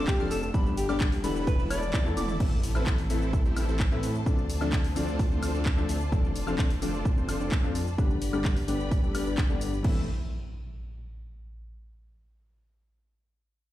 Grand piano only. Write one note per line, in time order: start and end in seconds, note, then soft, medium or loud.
0.19 0.41 F3 loud
0.19 0.41 A3 medium
0.19 0.41 C4 medium
0.19 0.41 D4 loud
0.54 0.86 D3 medium
0.54 0.86 G3 medium
0.54 0.86 B3 medium
0.54 0.87 D4 medium
0.88 1.10 D3 loud
0.88 1.11 G3 medium
0.88 1.11 B3 medium
0.88 1.11 D4 loud
1.23 1.45 D3 loud
1.23 1.45 G3 medium
1.23 1.46 B3 medium
1.23 1.46 D4 loud
1.70 1.84 A3 medium
1.70 1.84 B3 medium
1.70 1.84 E4 medium
1.70 1.84 A4 medium
2.05 2.27 A3 loud
2.05 2.27 B3 medium
2.05 2.27 E4 medium
2.05 2.27 A4 loud
2.40 2.72 E3 medium
2.40 2.72 A3 medium
2.40 2.72 C4 medium
2.40 2.73 E4 medium
2.75 2.96 E3 medium
2.75 2.97 A3 medium
2.75 2.97 C4 medium
2.75 2.97 E4 loud
3.09 3.31 E3 medium
3.09 3.31 A3 medium
3.09 3.32 C4 medium
3.09 3.32 E4 loud
3.56 3.70 E3 medium
3.56 3.70 A3 medium
3.56 3.70 C4 medium
3.56 3.70 E4 medium
3.91 4.13 E3 medium
3.91 4.13 A3 medium
3.91 4.13 C4 medium
3.91 4.13 E4 loud
4.26 4.58 F3 medium
4.26 4.58 A3 medium
4.26 4.58 C4 medium
4.26 4.59 D4 medium
4.61 4.82 F3 loud
4.61 4.83 A3 medium
4.61 4.83 C4 medium
4.61 4.83 D4 loud
4.95 5.17 F3 medium
4.95 5.18 A3 medium
4.95 5.18 C4 medium
4.95 5.18 D4 loud
5.42 5.56 F3 medium
5.42 5.56 A3 medium
5.42 5.56 C4 medium
5.42 5.56 D4 medium
5.77 5.99 F3 loud
5.77 5.99 A3 medium
5.77 5.99 C4 medium
5.77 5.99 D4 loud
6.12 6.44 F3 medium
6.12 6.44 A3 medium
6.12 6.45 C4 medium
6.12 6.45 D4 medium
6.47 6.68 F3 loud
6.47 6.69 A3 medium
6.47 6.69 C4 medium
6.47 6.69 D4 loud
6.82 7.03 F3 medium
6.82 7.04 A3 medium
6.82 7.04 C4 medium
6.82 7.04 D4 loud
7.28 7.42 F3 medium
7.28 7.42 A3 medium
7.28 7.42 C4 medium
7.28 7.42 D4 medium
7.63 7.85 F3 medium
7.63 7.85 A3 medium
7.63 7.85 C4 medium
7.63 7.85 D4 loud
7.98 8.30 D3 medium
7.98 8.30 G3 medium
7.98 8.31 B3 medium
7.98 8.31 D4 medium
8.33 8.55 D3 loud
8.33 8.55 G3 medium
8.33 8.55 B3 medium
8.33 8.55 D4 loud
8.67 8.89 D3 medium
8.67 8.90 G3 medium
8.67 8.90 B3 medium
8.67 8.90 D4 loud
9.14 9.28 D3 medium
9.14 9.28 G3 medium
9.14 9.28 B3 medium
9.14 9.28 D4 medium
9.49 9.71 D3 medium
9.49 9.71 G3 medium
9.49 9.71 B3 medium
9.49 9.71 D4 loud
9.83 10.01 E3 medium
9.83 10.01 A3 medium
9.83 10.02 C4 medium
9.83 10.03 E4 medium